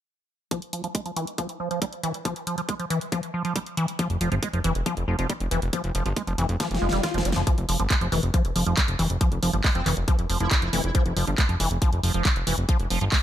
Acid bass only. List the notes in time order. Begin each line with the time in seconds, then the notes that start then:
0.51 F3
0.73 F3
0.84 F3
0.95 G#3
1.06 F3
1.16 E3
1.38 F3
1.60 F3
1.71 F3
1.82 G3
2.03 E3
2.25 F3
2.47 F3
2.58 F3
2.69 G#3
2.80 F3
2.90 E3
3.12 F3
3.34 F3
3.45 F3
3.56 G3
3.77 E3
3.99 F3
4.21 F3
4.32 F3
4.43 G#3
4.53 F3
4.64 E3
4.86 F3
5.08 F3
5.19 F3
5.30 G3
5.51 E3
5.73 F3
5.95 F3
6.06 F3
6.16 G#3
6.27 F3
6.38 E3
6.60 F3
6.82 G#3
6.93 G3
7.03 F4
7.14 F3
7.25 G#3
7.36 F3
7.47 F3
7.69 F3
7.80 F3
7.90 G#3
8.01 F3
8.12 E3
8.34 F3
8.56 F3
8.66 F3
8.77 G3
8.99 E3
9.21 F3
9.43 F3
9.53 F3
9.64 G#3
9.75 F3
9.86 E3
10.08 F3
10.30 F3
10.40 F3
10.51 G3
10.73 E3
10.95 F3
11.16 F3
11.27 F3
11.38 G#3
11.49 F3
11.60 E3
11.82 F3
12.03 F3
12.14 F3
12.25 G3
12.47 E3
12.69 F3
12.90 F3
13.01 F3
13.12 G#3